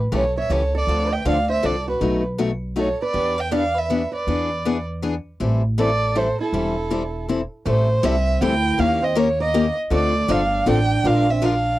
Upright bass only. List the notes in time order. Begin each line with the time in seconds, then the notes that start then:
0.12 B1
0.50 C#2
0.87 D2
1.25 D2
1.64 C2
2.01 B1
3.14 E2
4.27 E2
5.40 A1
6.53 E1
7.66 A1
8.03 C2
8.41 D2
8.79 D#2
9.91 D2
10.29 G1
10.66 A1
11.04 A#1